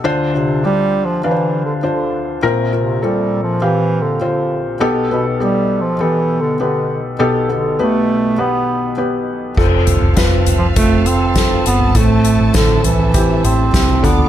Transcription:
0.04 felt piano D2 D3 D4 F4 C5
0.34 bass clarinet C3, felt piano D4 F4 C5
0.64 bass clarinet G3, felt piano D4 F4 G4
1.05 bass clarinet F3
1.24 bass clarinet E3, felt piano D4 B4 F5
1.31 felt piano C5
1.65 bass clarinet D3
1.83 bass clarinet D3, felt piano D4 F4 C5
2.42 felt piano A#1 A#2 C4 F4 A#4
2.72 bass clarinet C3, felt piano C4 F4 A#4
3.02 bass clarinet G3, felt piano C4 F4 A4
3.43 bass clarinet F3
3.61 bass clarinet E3, felt piano C4 G4 F5
4.02 bass clarinet D3
4.21 bass clarinet D3, felt piano C4 F4 C5
4.80 felt piano B1 B2 B3 G4 A4
5.10 bass clarinet B2, felt piano B3 G4 B4
5.40 bass clarinet G3, felt piano B3 G4 A4
5.82 bass clarinet F3
6.00 bass clarinet E3, felt piano B3 G4 A4
6.41 bass clarinet D3
6.60 bass clarinet D3, felt piano B3 G4 B4
7.19 felt piano B1 B2 B3 G4 A4
7.49 bass clarinet D3, felt piano B3 G4 A4
7.79 bass clarinet A3, felt piano B3 G4 B4
8.38 felt piano B3 G4 B4, bass clarinet B3
8.97 felt piano B3 G4 B4
9.57 fingered electric bass F1, felt piano C4 F4 A4, string section C4 A4 F5 A5, kick, crash
9.87 closed hi-hat, floor tom
10.02 fingered electric bass F1
10.16 fingered electric bass F1, felt piano C4 F4 B4, kick, snare, closed hi-hat
10.46 closed hi-hat, floor tom
10.58 bass clarinet F3
10.76 fingered electric bass F1, bass clarinet A3, felt piano C4 F4 A4, kick, closed hi-hat
11.06 bass clarinet C4, closed hi-hat
11.35 felt piano C4 F4 A4, kick, snare, closed hi-hat
11.66 fingered electric bass G1, bass clarinet B3, closed hi-hat
11.80 floor tom
11.95 fingered electric bass A1, felt piano A2 C4 E4 A4, bass clarinet A3, string section E5, kick, closed hi-hat
12.24 closed hi-hat
12.41 fingered electric bass A1
12.54 fingered electric bass A1, bass clarinet D3, felt piano C4 E4 A4, kick, snare, closed hi-hat
12.84 bass clarinet E3, closed hi-hat, floor tom
13.14 felt piano C4 E4 G4, kick, closed hi-hat
13.44 fingered electric bass A1, bass clarinet C4, closed hi-hat
13.73 fingered electric bass C2, felt piano C4 E4 G4, kick, snare, closed hi-hat
14.03 fingered electric bass D2, felt piano D3 D4 F4 A4, bass clarinet B3, string section D5 F5 D6, kick, closed hi-hat
14.19 floor tom

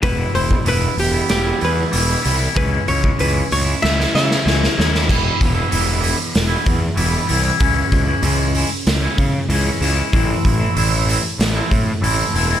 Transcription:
0.01 picked electric bass E1, clean electric guitar E2 B2 E3 G3 B3 E4, hollow-body jazz guitar B4, kick, open hi-hat
0.17 clean electric guitar E3 G3 E4
0.31 picked electric bass E1, clean electric guitar E3 G3 E4, hollow-body jazz guitar C5, open hi-hat
0.51 kick
0.64 picked electric bass E1, clean electric guitar E2 B2 E3 G3 B3 E4, open hi-hat
0.68 hollow-body jazz guitar B4
0.97 picked electric bass E1, hollow-body jazz guitar G4, muted clean electric guitar stroke, open hi-hat
1.12 clean electric guitar E3 G3 B3 E4
1.29 picked electric bass E1, hollow-body jazz guitar G4, snare, open hi-hat
1.44 clean electric guitar E3 G3 B3 E4
1.58 clean electric guitar E3 G3 B3 E4, open hi-hat
1.62 picked electric bass E2, hollow-body jazz guitar B4
1.90 picked electric bass E1, clean electric guitar E2 B2 E3 G3 B3 E4, open hi-hat
2.06 clean electric guitar E3 G3 B3 E4
2.21 clean electric guitar E3 G3 B3 E4, open hi-hat
2.26 picked electric bass C2
2.37 clean electric guitar E3 G3 B3 E4
2.54 picked electric bass C#2, clean electric guitar C#3 E3 G#3 C#4 E4, hollow-body jazz guitar B4, kick, open hi-hat
2.70 clean electric guitar G#3 C#4 E4
2.86 picked electric bass C#2, clean electric guitar E3 G#3 C#4 E4, hollow-body jazz guitar C#5, open hi-hat
3.04 kick
3.17 picked electric bass C#2, clean electric guitar C#3 E3 G#3 C#4 E4, hollow-body jazz guitar B4, open hi-hat
3.49 picked electric bass C#2, hollow-body jazz guitar C#5, muted clean electric guitar stroke, open hi-hat
3.65 clean electric guitar G#3 C#4 E4
3.82 picked electric bass C#2, hollow-body jazz guitar E5, snare
3.96 clean electric guitar G#3 C#4 E4, snare
4.11 picked electric bass C#3, clean electric guitar E3 G#3 C#4 E4, hollow-body jazz guitar E5
4.16 snare
4.31 snare
4.43 picked electric bass C#2, clean electric guitar C#3 E3 G#3 C#4 E4
4.47 snare
4.59 clean electric guitar G#3 C#4 E4
4.64 snare
4.75 picked electric bass D#2, clean electric guitar E3 G#3 C#4 E4
4.80 snare
4.91 clean electric guitar G#3 C#4 E4, snare
5.06 picked electric bass E1, clean electric guitar E2 B2 E3 G3 B3 E4, kick, crash
5.41 picked electric bass E1, kick, open hi-hat
5.54 clean electric guitar E3 G3 B3 E4
5.69 picked electric bass E1, clean electric guitar E2 B2 E3 G3 B3 E4, open hi-hat
6.00 clean electric guitar E3 G3 B3 E4, open hi-hat
6.18 muted clean electric guitar stroke
6.35 picked electric bass E1, snare, open hi-hat
6.47 clean electric guitar E3 G3 B3 E4
6.66 picked electric bass E2, kick, open hi-hat
6.81 muted clean electric guitar stroke
6.95 picked electric bass E1, clean electric guitar E2 B2 E3 G3 B3 E4, open hi-hat
7.27 picked electric bass C2, clean electric guitar E3 G3 B3 E4, open hi-hat
7.43 clean electric guitar E3 G3 B3 E4
7.59 picked electric bass C#2, clean electric guitar C#3 E3 G#3 C#4 E4, kick, open hi-hat
7.92 picked electric bass C#2, kick, open hi-hat
8.06 clean electric guitar G#3 C#4 E4
8.22 picked electric bass C#2, clean electric guitar C#3 E3 G#3 C#4 E4, open hi-hat
8.54 clean electric guitar E3 G#3 C#4 E4, open hi-hat
8.72 muted clean electric guitar stroke
8.87 picked electric bass C#2, snare, open hi-hat
9.02 clean electric guitar G#3 C#4 E4
9.18 picked electric bass C#3, kick, open hi-hat
9.34 muted clean electric guitar stroke
9.49 picked electric bass C#2, clean electric guitar C#3 E3 G#3 C#4 E4, open hi-hat
9.80 picked electric bass C#2, clean electric guitar E3 G#3 C#4 E4, open hi-hat
9.95 clean electric guitar G#3 C#4 E4
10.11 picked electric bass A1, clean electric guitar A2 E3 A3 C4 E4, kick, open hi-hat
10.45 picked electric bass A1, kick, open hi-hat
10.59 clean electric guitar A3 C4 E4
10.74 picked electric bass A1, clean electric guitar A2 E3 A3 C4 E4, open hi-hat
11.06 clean electric guitar E3 A3 C4 E4, open hi-hat
11.23 muted clean electric guitar stroke
11.39 picked electric bass A1, snare, open hi-hat
11.55 clean electric guitar A3 C4 E4
11.71 picked electric bass A2, kick, open hi-hat
11.88 muted clean electric guitar stroke
12.01 picked electric bass A1, clean electric guitar A2 E3 A3 C4 E4, open hi-hat
12.33 picked electric bass E1, clean electric guitar E3 A3 C4 E4, open hi-hat
12.49 clean electric guitar A3 C4 E4

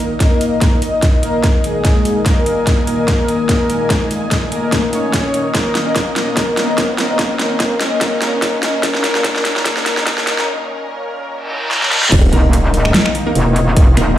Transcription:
Already playing: analog synth pad A#2 D#3 A#3 D#4 D#5, supersaw synth A#3 A#4, ambient pad D#4 A#4 D#5 C#6 D#6, riser
0.20 supersaw synth A#3 A#4, kick, snare, closed hi-hat
0.41 closed hi-hat
0.61 kick, snare, closed hi-hat
0.82 closed hi-hat
1.02 kick, snare, closed hi-hat
1.23 supersaw synth A#3 A#4, closed hi-hat
1.44 kick, snare, closed hi-hat
1.64 supersaw synth G#3 G#4, closed hi-hat
1.85 kick, snare, closed hi-hat
2.05 closed hi-hat
2.26 supersaw synth A#3 A#4, analog synth pad G#5, kick, snare, closed hi-hat
2.46 closed hi-hat
2.67 kick, snare, closed hi-hat
2.87 supersaw synth A#3 A#4, closed hi-hat
3.08 kick, snare, closed hi-hat
3.28 closed hi-hat
3.49 supersaw synth A#3 A#4, kick, snare, closed hi-hat
3.70 closed hi-hat
3.90 kick, snare, closed hi-hat
4.11 closed hi-hat
4.31 kick, snare, closed hi-hat
4.52 supersaw synth A#3 A#4, closed hi-hat
4.72 kick, snare, closed hi-hat
4.93 supersaw synth C#4 C#5, closed hi-hat
5.13 kick, snare, closed hi-hat
5.34 closed hi-hat
5.55 supersaw synth A#3 A#4, analog synth pad C#4 D#5, kick, snare, closed hi-hat
5.75 snare, closed hi-hat
5.96 kick, snare, closed hi-hat
6.16 supersaw synth A#3 A#4, snare, closed hi-hat
6.37 supersaw synth A#3 A#4, kick, snare, closed hi-hat
6.57 snare, closed hi-hat
6.78 kick, snare, closed hi-hat
6.98 supersaw synth A#3 A#4, snare, closed hi-hat
7.19 supersaw synth A#3 A#4, kick, snare, closed hi-hat
7.39 snare, closed hi-hat
7.60 kick, snare, closed hi-hat
7.80 supersaw synth A#3 A#4, snare, closed hi-hat
8.01 supersaw synth A#3 A#4, kick, snare, closed hi-hat
8.22 snare, closed hi-hat
8.42 kick, snare, closed hi-hat
8.63 supersaw synth A#3 A#4, snare, closed hi-hat
8.83 supersaw synth A#3 A#4, analog synth pad A#4, kick, snare, closed hi-hat
8.95 snare
9.04 snare, closed hi-hat
9.15 snare
9.24 supersaw synth A#3 A#4, kick, snare, closed hi-hat
9.36 snare
9.45 snare, closed hi-hat
9.56 snare
9.65 supersaw synth A#3 A#4, kick, snare, closed hi-hat
9.77 snare
9.86 snare, closed hi-hat
9.97 snare
10.06 supersaw synth A#3 A#4, kick, snare, closed hi-hat
10.18 snare
10.27 snare, closed hi-hat
10.38 snare
11.30 reverse cymbal
11.71 snare
11.82 snare
11.92 snare
12.03 snare
12.12 wobble bass D#1, analog synth pad D#3 A#3 D#4, ambient pad D#4, kick, closed hi-hat, crash, impact
12.23 ambient pad A#4
12.33 wobble bass D#1, synth stab A#3 D#4 A#4, ambient pad D#5, closed hi-hat
12.53 closed hi-hat
12.74 wobble bass D1, closed hi-hat
12.85 finger snap
12.94 snare, closed hi-hat
13.06 finger snap
13.15 closed hi-hat
13.26 synth stab A#3 D#4 A#4
13.35 wobble bass E1, closed hi-hat
13.56 closed hi-hat
13.76 kick, closed hi-hat
13.97 wobble bass D#1, synth stab A#3 D#4 A#4, finger snap, closed hi-hat

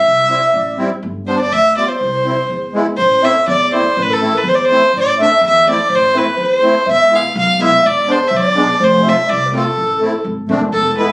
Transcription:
Already playing: alto flute E5, violin E5
0.04 upright bass C2
0.28 accordion G3 C4 E4
0.53 upright bass A1, alto flute D5
0.77 accordion G3 C4 E4
1.03 upright bass G1
1.27 accordion G3 B3 D4, violin C5, alto flute C5
1.40 violin D5, alto flute D5
1.52 upright bass D2, violin E5, alto flute E5
1.75 accordion G3 B3 F4, alto flute D5, violin D5
1.88 violin C5, alto flute C5
2.01 upright bass C2
2.24 accordion G3 C4 E4
2.49 upright bass E2
2.73 accordion G#3 B3 E4
2.97 upright bass A1, violin C5, alto flute C5
3.22 accordion A3 C4 E4, alto flute E5, violin E5
3.48 upright bass E2, alto flute D5, violin D5
3.72 accordion A3 C4 E4, violin C5
3.97 upright bass A1, alto flute B4
4.02 violin B4
4.10 alto flute A4, violin A4
4.20 accordion A3 C4 E4
4.35 alto flute B4, violin B4
4.44 upright bass E2, alto flute C5
4.48 violin C5
4.55 violin D5
4.61 alto flute C5, violin C5
4.71 accordion A3 C4 E4
4.94 upright bass A1, alto flute D5
5.00 violin D5
5.17 accordion A3 C4 D4, alto flute E5
5.23 violin E5
5.41 upright bass E2, alto flute E5
5.47 violin E5
5.66 accordion A3 C4 E4, alto flute D5, violin D5
5.89 upright bass A1, alto flute C5
5.95 violin C5
6.14 accordion A3 C4 E4, alto flute B4, violin B4
6.37 upright bass E2, alto flute C5
6.43 violin B4
6.54 violin C5
6.62 accordion A3 C4 E4
6.86 upright bass E1, alto flute E5
6.92 violin E5
7.10 accordion G#3 B3 E4, alto flute F5
7.15 violin F5
7.35 upright bass B1, alto flute F5, violin F5
7.58 accordion G#3 B3 E4
7.63 violin E5
7.83 upright bass E1, alto flute D5, violin D5
8.06 accordion G#3 B3 D4, alto flute C5
8.11 violin C5
8.28 upright bass B1, alto flute D5, violin E5
8.36 violin D5
8.55 accordion G#3 B3 D4
8.79 upright bass F1, alto flute C5
8.83 violin C5
9.03 accordion A3 C4 F4, alto flute E5
9.09 violin E5
9.27 upright bass C2, alto flute D5, violin D5
9.46 alto flute B4
9.52 accordion A3 C4 F4, alto flute A4
9.57 violin A4
9.77 upright bass A1
10.00 accordion A3 C4 E4
10.24 upright bass G#1
10.49 upright bass E1, accordion A3 C4 D4
10.73 upright bass E1, alto flute A4, violin A4
10.98 accordion G#3 B3 E4, violin B4

